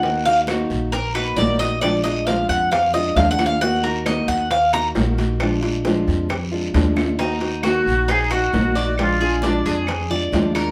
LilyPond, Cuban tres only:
\new Staff \with { instrumentName = "Cuban tres" } { \time 4/4 \key ees \minor \tempo 4 = 134 ges''8 f''8 r4 bes'8 ces''8 d''8 ees''8 | d''8 ees''8 f''8 ges''8 f''8 ees''8 \tuplet 3/2 { f''8 ges''8 f''8 } | ges''8 bes'8 ees''8 ges''8 f''8 bes''8 r4 | r1 |
ees'4 ges'4 ees'8 ges'4 d''8~ | d''8 aes'8 d''8 aes'4 d''4 bes'8 | }